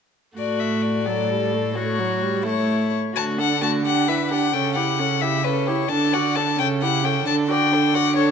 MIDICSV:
0, 0, Header, 1, 5, 480
1, 0, Start_track
1, 0, Key_signature, 2, "major"
1, 0, Tempo, 463320
1, 385, Time_signature, 6, 3, 24, 8
1, 4224, Tempo, 454890
1, 8691, End_track
2, 0, Start_track
2, 0, Title_t, "Violin"
2, 0, Program_c, 0, 40
2, 393, Note_on_c, 0, 74, 35
2, 613, Note_on_c, 0, 76, 31
2, 629, Note_off_c, 0, 74, 0
2, 853, Note_on_c, 0, 74, 35
2, 869, Note_off_c, 0, 76, 0
2, 1805, Note_off_c, 0, 74, 0
2, 1811, Note_on_c, 0, 73, 40
2, 2513, Note_off_c, 0, 73, 0
2, 2543, Note_on_c, 0, 73, 46
2, 3050, Note_off_c, 0, 73, 0
2, 3273, Note_on_c, 0, 81, 52
2, 3356, Note_off_c, 0, 81, 0
2, 3527, Note_on_c, 0, 78, 47
2, 3748, Note_off_c, 0, 78, 0
2, 3754, Note_on_c, 0, 81, 49
2, 3837, Note_off_c, 0, 81, 0
2, 3997, Note_on_c, 0, 78, 54
2, 4229, Note_on_c, 0, 76, 44
2, 4245, Note_off_c, 0, 78, 0
2, 4464, Note_off_c, 0, 76, 0
2, 4470, Note_on_c, 0, 78, 46
2, 4703, Note_on_c, 0, 79, 51
2, 4718, Note_off_c, 0, 78, 0
2, 4932, Note_off_c, 0, 79, 0
2, 4938, Note_on_c, 0, 78, 46
2, 5422, Note_on_c, 0, 76, 53
2, 5437, Note_off_c, 0, 78, 0
2, 5662, Note_on_c, 0, 71, 46
2, 5678, Note_off_c, 0, 76, 0
2, 5906, Note_on_c, 0, 73, 44
2, 5922, Note_off_c, 0, 71, 0
2, 6132, Note_on_c, 0, 81, 56
2, 6148, Note_off_c, 0, 73, 0
2, 6395, Note_on_c, 0, 78, 49
2, 6411, Note_off_c, 0, 81, 0
2, 6625, Note_on_c, 0, 81, 51
2, 6641, Note_off_c, 0, 78, 0
2, 6871, Note_off_c, 0, 81, 0
2, 6879, Note_on_c, 0, 79, 57
2, 6963, Note_off_c, 0, 79, 0
2, 7117, Note_on_c, 0, 78, 53
2, 7357, Note_on_c, 0, 79, 49
2, 7373, Note_off_c, 0, 78, 0
2, 7582, Note_off_c, 0, 79, 0
2, 7588, Note_on_c, 0, 81, 59
2, 7673, Note_off_c, 0, 81, 0
2, 7826, Note_on_c, 0, 79, 54
2, 8306, Note_on_c, 0, 78, 64
2, 8322, Note_off_c, 0, 79, 0
2, 8524, Note_off_c, 0, 78, 0
2, 8531, Note_on_c, 0, 73, 52
2, 8691, Note_off_c, 0, 73, 0
2, 8691, End_track
3, 0, Start_track
3, 0, Title_t, "Violin"
3, 0, Program_c, 1, 40
3, 383, Note_on_c, 1, 66, 30
3, 1098, Note_on_c, 1, 69, 34
3, 1113, Note_off_c, 1, 66, 0
3, 1812, Note_on_c, 1, 66, 38
3, 1828, Note_off_c, 1, 69, 0
3, 2515, Note_on_c, 1, 64, 44
3, 2531, Note_off_c, 1, 66, 0
3, 3046, Note_off_c, 1, 64, 0
3, 3253, Note_on_c, 1, 66, 30
3, 3503, Note_on_c, 1, 69, 29
3, 3519, Note_off_c, 1, 66, 0
3, 3746, Note_on_c, 1, 66, 28
3, 3761, Note_off_c, 1, 69, 0
3, 3981, Note_off_c, 1, 66, 0
3, 3987, Note_on_c, 1, 67, 30
3, 4226, Note_on_c, 1, 71, 28
3, 4242, Note_off_c, 1, 67, 0
3, 4469, Note_on_c, 1, 67, 28
3, 4485, Note_off_c, 1, 71, 0
3, 4708, Note_off_c, 1, 67, 0
3, 4714, Note_on_c, 1, 69, 32
3, 4944, Note_on_c, 1, 67, 29
3, 4960, Note_off_c, 1, 69, 0
3, 5183, Note_on_c, 1, 69, 30
3, 5199, Note_off_c, 1, 67, 0
3, 5436, Note_on_c, 1, 67, 33
3, 5451, Note_off_c, 1, 69, 0
3, 5665, Note_off_c, 1, 67, 0
3, 5671, Note_on_c, 1, 69, 29
3, 5905, Note_on_c, 1, 67, 29
3, 5921, Note_off_c, 1, 69, 0
3, 6134, Note_off_c, 1, 67, 0
3, 6141, Note_on_c, 1, 69, 33
3, 6383, Note_on_c, 1, 74, 32
3, 6399, Note_off_c, 1, 69, 0
3, 6631, Note_on_c, 1, 69, 30
3, 6647, Note_off_c, 1, 74, 0
3, 6874, Note_off_c, 1, 69, 0
3, 6879, Note_on_c, 1, 69, 33
3, 7121, Note_on_c, 1, 67, 32
3, 7137, Note_off_c, 1, 69, 0
3, 7362, Note_on_c, 1, 69, 32
3, 7378, Note_off_c, 1, 67, 0
3, 7598, Note_off_c, 1, 69, 0
3, 7608, Note_on_c, 1, 69, 36
3, 7843, Note_on_c, 1, 74, 36
3, 7859, Note_off_c, 1, 69, 0
3, 8075, Note_on_c, 1, 69, 35
3, 8091, Note_off_c, 1, 74, 0
3, 8308, Note_on_c, 1, 74, 39
3, 8324, Note_off_c, 1, 69, 0
3, 8545, Note_off_c, 1, 74, 0
3, 8552, Note_on_c, 1, 69, 35
3, 8691, Note_off_c, 1, 69, 0
3, 8691, End_track
4, 0, Start_track
4, 0, Title_t, "Viola"
4, 0, Program_c, 2, 41
4, 378, Note_on_c, 2, 57, 31
4, 1106, Note_on_c, 2, 54, 33
4, 1122, Note_off_c, 2, 57, 0
4, 1346, Note_on_c, 2, 55, 35
4, 1362, Note_off_c, 2, 54, 0
4, 1594, Note_on_c, 2, 57, 36
4, 1609, Note_off_c, 2, 55, 0
4, 1823, Note_off_c, 2, 57, 0
4, 1827, Note_on_c, 2, 57, 40
4, 2062, Note_on_c, 2, 54, 44
4, 2077, Note_off_c, 2, 57, 0
4, 2300, Note_on_c, 2, 55, 45
4, 2316, Note_off_c, 2, 54, 0
4, 2534, Note_on_c, 2, 57, 41
4, 2549, Note_off_c, 2, 55, 0
4, 3055, Note_off_c, 2, 57, 0
4, 3264, Note_on_c, 2, 57, 31
4, 3505, Note_on_c, 2, 62, 31
4, 3520, Note_off_c, 2, 57, 0
4, 3749, Note_on_c, 2, 57, 30
4, 3765, Note_off_c, 2, 62, 0
4, 3982, Note_off_c, 2, 57, 0
4, 3989, Note_on_c, 2, 62, 32
4, 4230, Note_on_c, 2, 64, 30
4, 4245, Note_off_c, 2, 62, 0
4, 4468, Note_on_c, 2, 62, 31
4, 4484, Note_off_c, 2, 64, 0
4, 4708, Note_off_c, 2, 62, 0
4, 4718, Note_on_c, 2, 61, 32
4, 4947, Note_on_c, 2, 64, 32
4, 4962, Note_off_c, 2, 61, 0
4, 5190, Note_on_c, 2, 61, 29
4, 5206, Note_off_c, 2, 64, 0
4, 5427, Note_on_c, 2, 64, 31
4, 5443, Note_off_c, 2, 61, 0
4, 5672, Note_off_c, 2, 64, 0
4, 5684, Note_on_c, 2, 61, 30
4, 5917, Note_on_c, 2, 64, 32
4, 5933, Note_off_c, 2, 61, 0
4, 6156, Note_off_c, 2, 64, 0
4, 6163, Note_on_c, 2, 62, 33
4, 6402, Note_on_c, 2, 66, 32
4, 6418, Note_off_c, 2, 62, 0
4, 6642, Note_on_c, 2, 62, 31
4, 6658, Note_off_c, 2, 66, 0
4, 6866, Note_off_c, 2, 62, 0
4, 6872, Note_on_c, 2, 61, 32
4, 7122, Note_on_c, 2, 64, 32
4, 7138, Note_off_c, 2, 61, 0
4, 7342, Note_on_c, 2, 61, 35
4, 7357, Note_off_c, 2, 64, 0
4, 7579, Note_off_c, 2, 61, 0
4, 7585, Note_on_c, 2, 62, 37
4, 7818, Note_on_c, 2, 66, 34
4, 7834, Note_off_c, 2, 62, 0
4, 8065, Note_on_c, 2, 62, 35
4, 8081, Note_off_c, 2, 66, 0
4, 8301, Note_on_c, 2, 66, 38
4, 8316, Note_off_c, 2, 62, 0
4, 8531, Note_off_c, 2, 66, 0
4, 8537, Note_on_c, 2, 62, 38
4, 8691, Note_off_c, 2, 62, 0
4, 8691, End_track
5, 0, Start_track
5, 0, Title_t, "Cello"
5, 0, Program_c, 3, 42
5, 383, Note_on_c, 3, 45, 35
5, 3011, Note_off_c, 3, 45, 0
5, 3273, Note_on_c, 3, 50, 38
5, 4707, Note_on_c, 3, 49, 36
5, 4723, Note_off_c, 3, 50, 0
5, 6150, Note_off_c, 3, 49, 0
5, 6156, Note_on_c, 3, 50, 40
5, 6877, Note_on_c, 3, 49, 38
5, 6893, Note_off_c, 3, 50, 0
5, 7596, Note_off_c, 3, 49, 0
5, 7604, Note_on_c, 3, 50, 44
5, 8691, Note_off_c, 3, 50, 0
5, 8691, End_track
0, 0, End_of_file